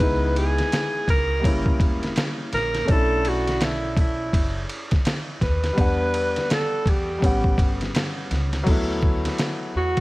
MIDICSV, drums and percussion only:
0, 0, Header, 1, 2, 480
1, 0, Start_track
1, 0, Time_signature, 4, 2, 24, 8
1, 0, Key_signature, 2, "major"
1, 0, Tempo, 722892
1, 6642, End_track
2, 0, Start_track
2, 0, Title_t, "Drums"
2, 0, Note_on_c, 9, 36, 105
2, 1, Note_on_c, 9, 51, 69
2, 65, Note_off_c, 9, 36, 0
2, 67, Note_off_c, 9, 51, 0
2, 242, Note_on_c, 9, 51, 60
2, 308, Note_off_c, 9, 51, 0
2, 388, Note_on_c, 9, 51, 42
2, 398, Note_on_c, 9, 38, 30
2, 455, Note_off_c, 9, 51, 0
2, 464, Note_off_c, 9, 38, 0
2, 480, Note_on_c, 9, 44, 49
2, 480, Note_on_c, 9, 51, 65
2, 487, Note_on_c, 9, 38, 96
2, 547, Note_off_c, 9, 44, 0
2, 547, Note_off_c, 9, 51, 0
2, 554, Note_off_c, 9, 38, 0
2, 716, Note_on_c, 9, 36, 89
2, 722, Note_on_c, 9, 51, 59
2, 782, Note_off_c, 9, 36, 0
2, 788, Note_off_c, 9, 51, 0
2, 958, Note_on_c, 9, 36, 74
2, 963, Note_on_c, 9, 51, 85
2, 1024, Note_off_c, 9, 36, 0
2, 1029, Note_off_c, 9, 51, 0
2, 1101, Note_on_c, 9, 36, 80
2, 1167, Note_off_c, 9, 36, 0
2, 1194, Note_on_c, 9, 36, 97
2, 1199, Note_on_c, 9, 51, 56
2, 1260, Note_off_c, 9, 36, 0
2, 1265, Note_off_c, 9, 51, 0
2, 1347, Note_on_c, 9, 51, 39
2, 1358, Note_on_c, 9, 38, 30
2, 1414, Note_off_c, 9, 51, 0
2, 1424, Note_off_c, 9, 38, 0
2, 1434, Note_on_c, 9, 44, 57
2, 1434, Note_on_c, 9, 51, 67
2, 1445, Note_on_c, 9, 38, 110
2, 1501, Note_off_c, 9, 44, 0
2, 1501, Note_off_c, 9, 51, 0
2, 1511, Note_off_c, 9, 38, 0
2, 1678, Note_on_c, 9, 51, 53
2, 1688, Note_on_c, 9, 38, 34
2, 1744, Note_off_c, 9, 51, 0
2, 1755, Note_off_c, 9, 38, 0
2, 1823, Note_on_c, 9, 38, 30
2, 1823, Note_on_c, 9, 51, 45
2, 1889, Note_off_c, 9, 51, 0
2, 1890, Note_off_c, 9, 38, 0
2, 1914, Note_on_c, 9, 51, 67
2, 1917, Note_on_c, 9, 36, 113
2, 1980, Note_off_c, 9, 51, 0
2, 1984, Note_off_c, 9, 36, 0
2, 2156, Note_on_c, 9, 51, 64
2, 2223, Note_off_c, 9, 51, 0
2, 2307, Note_on_c, 9, 51, 48
2, 2317, Note_on_c, 9, 38, 32
2, 2374, Note_off_c, 9, 51, 0
2, 2383, Note_off_c, 9, 38, 0
2, 2394, Note_on_c, 9, 44, 43
2, 2394, Note_on_c, 9, 51, 68
2, 2401, Note_on_c, 9, 38, 100
2, 2461, Note_off_c, 9, 44, 0
2, 2461, Note_off_c, 9, 51, 0
2, 2468, Note_off_c, 9, 38, 0
2, 2633, Note_on_c, 9, 36, 94
2, 2638, Note_on_c, 9, 51, 64
2, 2700, Note_off_c, 9, 36, 0
2, 2704, Note_off_c, 9, 51, 0
2, 2877, Note_on_c, 9, 36, 86
2, 2881, Note_on_c, 9, 51, 80
2, 2944, Note_off_c, 9, 36, 0
2, 2948, Note_off_c, 9, 51, 0
2, 3117, Note_on_c, 9, 51, 62
2, 3183, Note_off_c, 9, 51, 0
2, 3261, Note_on_c, 9, 51, 43
2, 3265, Note_on_c, 9, 36, 81
2, 3272, Note_on_c, 9, 38, 32
2, 3328, Note_off_c, 9, 51, 0
2, 3332, Note_off_c, 9, 36, 0
2, 3338, Note_off_c, 9, 38, 0
2, 3354, Note_on_c, 9, 44, 57
2, 3354, Note_on_c, 9, 51, 75
2, 3365, Note_on_c, 9, 38, 103
2, 3420, Note_off_c, 9, 44, 0
2, 3420, Note_off_c, 9, 51, 0
2, 3431, Note_off_c, 9, 38, 0
2, 3595, Note_on_c, 9, 36, 84
2, 3597, Note_on_c, 9, 51, 50
2, 3608, Note_on_c, 9, 38, 32
2, 3661, Note_off_c, 9, 36, 0
2, 3664, Note_off_c, 9, 51, 0
2, 3674, Note_off_c, 9, 38, 0
2, 3743, Note_on_c, 9, 38, 28
2, 3743, Note_on_c, 9, 51, 43
2, 3809, Note_off_c, 9, 38, 0
2, 3809, Note_off_c, 9, 51, 0
2, 3836, Note_on_c, 9, 36, 107
2, 3836, Note_on_c, 9, 51, 66
2, 3902, Note_off_c, 9, 36, 0
2, 3903, Note_off_c, 9, 51, 0
2, 4076, Note_on_c, 9, 51, 68
2, 4143, Note_off_c, 9, 51, 0
2, 4225, Note_on_c, 9, 51, 46
2, 4235, Note_on_c, 9, 38, 32
2, 4291, Note_off_c, 9, 51, 0
2, 4301, Note_off_c, 9, 38, 0
2, 4317, Note_on_c, 9, 44, 47
2, 4317, Note_on_c, 9, 51, 64
2, 4324, Note_on_c, 9, 38, 102
2, 4384, Note_off_c, 9, 44, 0
2, 4384, Note_off_c, 9, 51, 0
2, 4391, Note_off_c, 9, 38, 0
2, 4553, Note_on_c, 9, 36, 95
2, 4562, Note_on_c, 9, 51, 60
2, 4619, Note_off_c, 9, 36, 0
2, 4628, Note_off_c, 9, 51, 0
2, 4797, Note_on_c, 9, 36, 90
2, 4805, Note_on_c, 9, 51, 75
2, 4863, Note_off_c, 9, 36, 0
2, 4872, Note_off_c, 9, 51, 0
2, 4941, Note_on_c, 9, 36, 78
2, 5008, Note_off_c, 9, 36, 0
2, 5033, Note_on_c, 9, 36, 103
2, 5040, Note_on_c, 9, 51, 60
2, 5099, Note_off_c, 9, 36, 0
2, 5107, Note_off_c, 9, 51, 0
2, 5185, Note_on_c, 9, 51, 41
2, 5196, Note_on_c, 9, 38, 30
2, 5252, Note_off_c, 9, 51, 0
2, 5262, Note_off_c, 9, 38, 0
2, 5277, Note_on_c, 9, 44, 52
2, 5277, Note_on_c, 9, 51, 79
2, 5288, Note_on_c, 9, 38, 103
2, 5343, Note_off_c, 9, 44, 0
2, 5343, Note_off_c, 9, 51, 0
2, 5354, Note_off_c, 9, 38, 0
2, 5518, Note_on_c, 9, 51, 50
2, 5528, Note_on_c, 9, 38, 31
2, 5584, Note_off_c, 9, 51, 0
2, 5595, Note_off_c, 9, 38, 0
2, 5663, Note_on_c, 9, 38, 28
2, 5663, Note_on_c, 9, 51, 46
2, 5729, Note_off_c, 9, 51, 0
2, 5730, Note_off_c, 9, 38, 0
2, 5754, Note_on_c, 9, 36, 114
2, 5754, Note_on_c, 9, 51, 62
2, 5755, Note_on_c, 9, 49, 84
2, 5821, Note_off_c, 9, 36, 0
2, 5821, Note_off_c, 9, 49, 0
2, 5821, Note_off_c, 9, 51, 0
2, 5993, Note_on_c, 9, 36, 78
2, 6060, Note_off_c, 9, 36, 0
2, 6143, Note_on_c, 9, 51, 63
2, 6153, Note_on_c, 9, 38, 32
2, 6210, Note_off_c, 9, 51, 0
2, 6219, Note_off_c, 9, 38, 0
2, 6231, Note_on_c, 9, 44, 43
2, 6231, Note_on_c, 9, 51, 65
2, 6238, Note_on_c, 9, 38, 86
2, 6298, Note_off_c, 9, 44, 0
2, 6298, Note_off_c, 9, 51, 0
2, 6305, Note_off_c, 9, 38, 0
2, 6620, Note_on_c, 9, 51, 50
2, 6642, Note_off_c, 9, 51, 0
2, 6642, End_track
0, 0, End_of_file